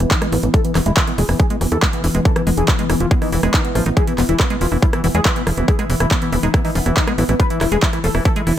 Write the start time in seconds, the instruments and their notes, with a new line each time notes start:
Already playing: ambient pad E3 E4
0.00 analog synth bass E1, acid bass E3, analog synth lead B3, cross-stick, closed hi-hat
0.11 acid bass E3, analog synth lead D#4, kick, clap, closed hi-hat
0.22 acid bass G#3, analog synth lead B3, cross-stick, closed hi-hat
0.32 analog synth bass A1, acid bass E3, analog synth lead B3, open hi-hat
0.43 analog synth bass A1, acid bass E3, analog synth lead B3, closed hi-hat
0.54 acid bass G#3, ambient pad B3, analog synth lead A4, kick, cross-stick, closed hi-hat
0.65 acid bass E3, analog synth lead B3, closed hi-hat
0.75 analog synth bass E1, acid bass E3, analog synth lead B3, cross-stick, clap, open hi-hat
0.86 analog synth bass E1, acid bass G#3, analog synth lead E4, closed hi-hat
0.97 acid bass E3, analog synth lead B3, kick, clap, closed hi-hat
1.07 acid bass E3, analog synth lead B3, cross-stick, closed hi-hat
1.18 analog synth bass E1, acid bass G#3, analog synth lead G#4, open hi-hat
1.29 analog synth bass E1, acid bass E3, analog synth lead B3, cross-stick, open hi-hat
1.40 acid bass E3, analog synth lead G#4, kick, closed hi-hat
1.50 acid bass G#3, analog synth lead B3, closed hi-hat
1.61 analog synth bass E1, acid bass E3, analog synth lead B3, cross-stick, open hi-hat
1.72 analog synth bass E2, acid bass E3, analog synth lead A4, closed hi-hat
1.82 acid bass G#3, analog synth lead B3, kick, cross-stick, clap, closed hi-hat
1.93 acid bass E3, analog synth lead B3, closed hi-hat
2.04 analog synth bass E1, acid bass E3, open hi-hat
2.15 analog synth bass E1, acid bass G#3, analog synth lead B3, cross-stick, closed hi-hat
2.25 acid bass E3, analog synth lead A4, kick, closed hi-hat
2.36 acid bass E3, analog synth lead B3, cross-stick, closed hi-hat
2.47 analog synth bass E1, acid bass G#3, analog synth lead B3, open hi-hat
2.57 analog synth bass E1, acid bass E3, analog synth lead G#4, closed hi-hat
2.68 acid bass E3, analog synth lead B3, kick, cross-stick, clap, closed hi-hat
2.79 acid bass G#3, analog synth lead B3, closed hi-hat
2.90 analog synth bass E1, acid bass E3, analog synth lead B3, cross-stick, open hi-hat
3.00 analog synth bass E1, acid bass E3, analog synth lead F4, closed hi-hat
3.11 acid bass G#3, analog synth lead B3, kick, closed hi-hat
3.22 acid bass E3, analog synth lead D#4, cross-stick, open hi-hat
3.32 analog synth bass E1, acid bass E3, analog synth lead B3, open hi-hat
3.43 analog synth bass E1, acid bass G#3, analog synth lead B3, cross-stick, closed hi-hat
3.54 acid bass D#3, analog synth lead D#4, kick, clap, closed hi-hat
3.65 analog synth lead B3, closed hi-hat
3.75 analog synth bass A1, acid bass F3, analog synth lead B3, cross-stick, open hi-hat
3.86 analog synth bass A1, acid bass D#3, analog synth lead B3, closed hi-hat
3.97 acid bass E3, ambient pad E4, analog synth lead G#4, kick, closed hi-hat
4.07 acid bass E3, analog synth lead B3, closed hi-hat
4.18 analog synth bass E1, acid bass F3, analog synth lead B3, cross-stick, clap, open hi-hat
4.29 analog synth bass E1, acid bass E3, analog synth lead E4, closed hi-hat
4.40 acid bass E3, analog synth lead B3, kick, cross-stick, clap, closed hi-hat
4.50 acid bass G#3, analog synth lead B3, closed hi-hat
4.61 analog synth bass E1, acid bass E3, analog synth lead F4, open hi-hat
4.72 analog synth bass E1, acid bass E3, analog synth lead B3, cross-stick, open hi-hat
4.82 acid bass F3, analog synth lead E4, kick, closed hi-hat
4.93 acid bass E3, analog synth lead B3, cross-stick, closed hi-hat
5.04 analog synth bass E1, acid bass E3, analog synth lead B3, open hi-hat
5.15 analog synth bass E2, acid bass G#3, analog synth lead G#4, closed hi-hat
5.25 acid bass E3, analog synth lead B3, kick, cross-stick, clap, closed hi-hat
5.36 acid bass E3, analog synth lead B3, closed hi-hat
5.47 analog synth bass E1, acid bass F3, cross-stick, open hi-hat
5.57 analog synth bass E1, acid bass E3, analog synth lead B3, closed hi-hat
5.68 acid bass E3, analog synth lead G#4, kick, closed hi-hat
5.79 acid bass G#3, analog synth lead B3, cross-stick, closed hi-hat
5.90 analog synth bass E1, acid bass E3, analog synth lead B3, open hi-hat
6.00 analog synth bass E1, acid bass E3, analog synth lead E4, cross-stick, closed hi-hat
6.11 acid bass F3, analog synth lead B3, kick, clap, closed hi-hat
6.22 acid bass E3, analog synth lead B3, closed hi-hat
6.32 analog synth bass E1, acid bass E3, analog synth lead B3, cross-stick, open hi-hat
6.43 analog synth bass E1, acid bass G#3, analog synth lead D#4, closed hi-hat
6.54 acid bass E3, analog synth lead B3, kick, cross-stick, closed hi-hat
6.65 acid bass E3, analog synth lead D#4, open hi-hat
6.75 analog synth bass E1, acid bass F3, analog synth lead B3, open hi-hat
6.86 analog synth bass E1, acid bass E3, analog synth lead B3, cross-stick, closed hi-hat
6.97 acid bass E3, analog synth lead D#4, kick, clap, closed hi-hat
7.07 acid bass G#3, analog synth lead B3, cross-stick, closed hi-hat
7.18 analog synth bass A1, acid bass E3, analog synth lead B3, open hi-hat
7.29 analog synth bass A1, acid bass E3, analog synth lead B3, closed hi-hat
7.40 acid bass F3, ambient pad A4, analog synth lead B4, kick, cross-stick, closed hi-hat
7.50 acid bass E3, analog synth lead E4, closed hi-hat
7.61 analog synth bass E1, acid bass E3, analog synth lead E4, cross-stick, clap, open hi-hat
7.72 analog synth bass E1, acid bass G#3, analog synth lead G#4, closed hi-hat
7.82 acid bass E3, analog synth lead E4, kick, clap, closed hi-hat
7.93 acid bass E3, analog synth lead E4, cross-stick, closed hi-hat
8.04 analog synth bass E1, acid bass F3, analog synth lead A4, open hi-hat
8.15 analog synth bass E1, acid bass E3, analog synth lead E4, cross-stick, open hi-hat
8.25 acid bass E3, analog synth lead A4, kick, closed hi-hat
8.36 acid bass G#3, analog synth lead E4, closed hi-hat
8.47 analog synth bass E1, acid bass E3, analog synth lead E4, cross-stick, open hi-hat